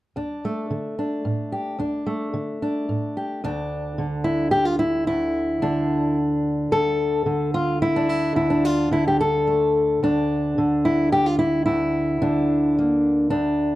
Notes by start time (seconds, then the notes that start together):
0.16 D2 D4
0.45 A3
0.71 D3
0.99 D4
1.25 A2
1.52 G4
1.79 D2 D4
2.06 A3
2.34 D3
2.62 D4
2.89 A2
3.17 G4
3.44 D2 D4
3.98 D3
4.24 E4
4.51 G4
4.65 F4
4.79 E4
5.07 D2 E4
5.62 D3 D4
6.71 D2 A4
7.26 D3
7.54 F4
7.82 E4
7.96 D4
8.09 E4
8.36 D2 E4
8.50 D4
8.65 F4
8.91 D3 E4
9.08 G4
9.21 A4
9.47 A3
10.03 D2 D4
10.58 D3
10.85 E4
11.12 G4
11.26 F4
11.39 E4
11.66 D2 E4
12.22 D3 D4
12.78 A#3
13.30 D2 D4